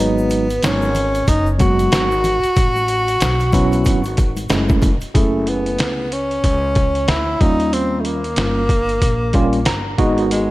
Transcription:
Already playing: upright bass G#1, tine electric piano F#3 G#3 B3 D#4
0.00 tenor saxophone B3
0.18 shaker
0.30 closed hi-hat, shaker
0.50 closed hi-hat, shaker
0.62 upright bass G#1, tine electric piano F#3 G#3 B3 D#4, tenor saxophone C#4, snare, closed hi-hat, shaker
0.82 shaker
0.95 closed hi-hat, low conga, shaker
1.15 closed hi-hat, shaker
1.27 upright bass F#1, tenor saxophone D#4, kick, closed hi-hat, shaker
1.46 shaker
1.59 tine electric piano F#3 G#3 B3 F#4, tenor saxophone F#4, kick, closed hi-hat, low conga, shaker
1.79 closed hi-hat, high conga, shaker
1.92 upright bass G#1, snare, closed hi-hat, shaker
2.11 shaker
2.24 closed hi-hat, low conga, shaker
2.43 muted upright bass stroke, closed hi-hat, shaker
2.56 upright bass A1, kick, closed hi-hat, shaker
2.76 high conga, shaker
2.88 closed hi-hat, shaker
3.08 closed hi-hat, shaker
3.20 upright bass B1, snare, closed hi-hat, high conga, shaker
3.40 closed hi-hat, shaker
3.52 tine electric piano F#3 B3 C#4 E4, kick, closed hi-hat, low conga, shaker
3.72 closed hi-hat, high conga, shaker
3.84 upright bass G#1, kick, closed hi-hat, shaker
4.04 closed hi-hat, shaker
4.17 kick, closed hi-hat, shaker
4.37 closed hi-hat, high conga, shaker
4.49 upright bass F#1, tine electric piano G#3 A3 C#4 E4, snare, closed hi-hat, shaker
4.69 kick, shaker
4.82 kick, closed hi-hat, low conga, shaker
5.01 muted upright bass stroke, closed hi-hat, shaker
5.14 upright bass F#1, tine electric piano A3 C#4 E4 G#4, tenor saxophone A3, kick, closed hi-hat
5.47 tenor saxophone B3, closed hi-hat
5.66 closed hi-hat
5.79 upright bass C#2, snare, closed hi-hat
6.12 tenor saxophone C#4, closed hi-hat
6.31 closed hi-hat
6.44 upright bass C#2, kick, closed hi-hat
6.75 kick, closed hi-hat
6.95 closed hi-hat
7.08 upright bass D2, tenor saxophone E4, snare, closed hi-hat
7.41 upright bass D#2, tine electric piano G3 A#3 C#4 F4, tenor saxophone D#4, kick, closed hi-hat
7.60 closed hi-hat
7.73 tenor saxophone C4, closed hi-hat
8.00 tenor saxophone A3
8.05 tenor saxophone A#3, closed hi-hat
8.24 closed hi-hat
8.36 upright bass G1, tine electric piano G3 A#3 C#4 F4, snare, closed hi-hat
8.69 kick, closed hi-hat
8.89 closed hi-hat
9.02 upright bass A#1, kick, closed hi-hat
9.33 tine electric piano G3 A#3 C#4 F4, kick, closed hi-hat
9.53 closed hi-hat
9.65 upright bass G1, tine electric piano A#5, snare, closed hi-hat
9.98 upright bass G#1, tine electric piano G#3 B3 D#4 F#4 D#5, kick, closed hi-hat
10.18 closed hi-hat
10.31 tenor saxophone G#3, closed hi-hat

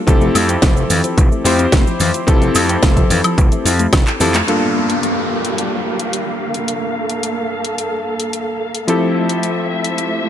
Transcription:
0.07 slap bass F1, synth arpeggio sound E3, electric grand piano C4 E4 G4 A4, kick, closed hi-hat, cabasa
0.21 synth arpeggio sound A3, cabasa
0.35 slap bass F2, synth arpeggio sound A3, open hi-hat, cabasa, high woodblock
0.49 synth arpeggio sound C4, closed hi-hat, cabasa
0.62 slap bass F1, synth arpeggio sound A3, kick, snare, closed hi-hat, cabasa
0.76 synth arpeggio sound F3, cabasa
0.90 slap bass F2, synth arpeggio sound E3, open hi-hat, cabasa
1.04 synth arpeggio sound F3, closed hi-hat, cabasa
1.17 slap bass F1, synth arpeggio sound E3, kick, closed hi-hat, cabasa
1.32 synth arpeggio sound A3, cabasa
1.44 slap bass F2, synth arpeggio sound A3, electric grand piano C4 E4 G4 C5, open hi-hat, cabasa
1.59 synth arpeggio sound C4, closed hi-hat, cabasa
1.72 slap bass F1, synth arpeggio sound A3, kick, snare, closed hi-hat, cabasa
1.87 synth arpeggio sound F3, cabasa
2.00 slap bass F2, synth arpeggio sound E3, open hi-hat, cabasa
2.14 synth arpeggio sound F3, closed hi-hat, cabasa
2.27 slap bass F1, synth arpeggio sound E3, electric grand piano C4 E4 G4 A4, kick, closed hi-hat, cabasa
2.42 synth arpeggio sound A3, closed hi-hat, cabasa
2.55 slap bass F2, synth arpeggio sound A3, open hi-hat, cabasa, high woodblock
2.69 synth arpeggio sound C4, closed hi-hat, cabasa
2.83 slap bass F1, synth arpeggio sound A3, kick, snare, closed hi-hat, cabasa
2.97 synth arpeggio sound F3, kick, closed hi-hat, cabasa
3.10 slap bass F2, synth arpeggio sound E3, open hi-hat, cabasa
3.24 synth arpeggio sound F3, closed hi-hat, cabasa, high woodblock
3.38 slap bass F1, synth arpeggio sound E3, kick, closed hi-hat, cabasa
3.52 synth arpeggio sound A3, closed hi-hat, cabasa
3.65 slap bass F2, synth arpeggio sound E4, open hi-hat, cabasa
3.79 synth arpeggio sound A3, closed hi-hat, cabasa
3.93 slap bass F1, synth arpeggio sound F3, kick, snare, closed hi-hat, cabasa, high woodblock
4.07 synth arpeggio sound A4, clap, closed hi-hat, cabasa
4.20 slap bass F2, synth arpeggio sound E3, electric grand piano C4 E4 G4 A4, open hi-hat, cabasa
4.34 synth arpeggio sound A3, clap, closed hi-hat, cabasa
4.47 electric grand piano G2 A#3 D4 F4 A4, string section A#3 G4 F5, closed hi-hat, downlifter
4.90 closed hi-hat
5.03 closed hi-hat
5.45 closed hi-hat
5.58 closed hi-hat
5.99 closed hi-hat
6.13 closed hi-hat
6.54 closed hi-hat
6.68 string section A4, closed hi-hat
7.10 closed hi-hat
7.23 closed hi-hat
7.65 closed hi-hat
7.78 closed hi-hat
8.20 closed hi-hat
8.33 closed hi-hat
8.75 closed hi-hat
8.87 electric grand piano F3 C4 E4 G4 A4, string section F3 A3 E5, closed hi-hat
9.29 closed hi-hat
9.43 closed hi-hat
9.84 closed hi-hat
9.98 closed hi-hat

